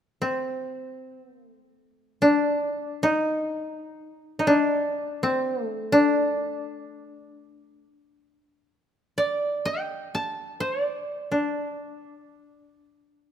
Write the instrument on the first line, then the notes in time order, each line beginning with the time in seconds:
koto
0.22 C4
1.20 B3
1.37 A#3
1.53 A3
2.22 D4
3.03 D#4
4.39 D#4
4.47 D4
5.23 C4
5.65 A3
5.92 D4
9.18 D5
9.65 G5
10.15 A5
10.60 C5
10.80 D5
11.32 D4